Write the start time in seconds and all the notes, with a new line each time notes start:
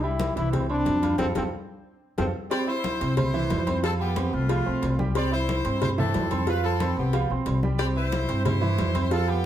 Already playing: C2
0.03 G3 E4 G4 G5, high conga, low agogo
0.20 cowbell, high conga, low timbale, low agogo
0.36 C2 E3 E4 E5, cowbell
0.53 C4, cowbell, high conga, low conga, low agogo
0.69 C4 D4 C5 C6, high conga, low agogo
0.85 F2, cowbell, high conga, low timbale, low agogo
1.03 F4 F5 F6, cowbell, high conga, low agogo
1.18 F2 C4 F4 A4 C5, cowbell, high conga, high timbale
1.35 C4 F4 A4 C5, cowbell, high conga, high timbale
2.18 F2 C4 F4 A4 C5, cowbell, high conga, high timbale
2.50 C4 G4 C5 D5 C6, cowbell, high conga, low agogo
2.67 E4 C5 E5 E6, high conga, low agogo
2.84 cowbell, high conga, low timbale, low agogo
3.00 C2 C4 C5 C6, cowbell
3.17 E4 C5, cowbell, high conga, low conga, low agogo
3.34 E3 E4 E5, high conga, low agogo
3.50 F2, cowbell, high conga, low timbale, low agogo
3.67 C4 C5 C6, cowbell, high conga, low agogo
3.83 F3 C4 F4 A4 F5, cowbell, high conga
4.00 B3 G4, high conga, low agogo
4.16 C4 C5 C6, cowbell, high conga, low timbale, low agogo
4.33 C2 A3 F4, high conga
4.49 F3 F4 F5, cowbell, high conga, low agogo
4.66 B1 C4 C5 C6, high conga
4.82 C2, cowbell, high conga, low timbale, low agogo
4.99 G3 G4 G5, high conga
5.15 C4 G4 C5 D5 C6, cowbell, low agogo
5.32 E4 C5 E5 E6, high conga, low agogo
5.49 cowbell, high conga, low timbale, low agogo
5.65 G2 C4 C5 C6, cowbell
5.82 E4 C5, cowbell, high conga, low conga, low agogo
5.98 E3 C4 E4 A4 E5, high conga, low conga, low agogo
6.14 F2, cowbell, high conga, low timbale, low agogo
6.31 C4 C5 C6, cowbell, high conga, low agogo
6.47 F3 F4 B4 F5, cowbell, high conga
6.64 C4 A4, high conga, low agogo
6.80 C4 C5 C6, cowbell, high conga, low timbale, low agogo
6.97 C2 B3 G4, high conga
7.13 F3 F4 F5, cowbell, low agogo
7.30 B1 C4 C5 C6, high conga
7.46 C2, cowbell, high conga, low timbale, low agogo
7.63 G3 G4 G5, high conga
7.79 C4 G4 C5 D5 C6, cowbell, low agogo
7.96 E4 C5 E5 E6, high conga, low agogo
8.12 cowbell, high conga, low timbale, low agogo
8.28 G2 C4 C5 C6, cowbell
8.45 E4 C5, cowbell, high conga, low conga, low agogo
8.61 E3 E4 E5, high conga, low agogo
8.78 F2, cowbell, high conga, low timbale, low agogo
8.94 C4 C5 C6, cowbell, high conga, low agogo
9.11 F3 C4 F4 A4 F5, cowbell, high conga
9.28 B3 G4, high conga, low agogo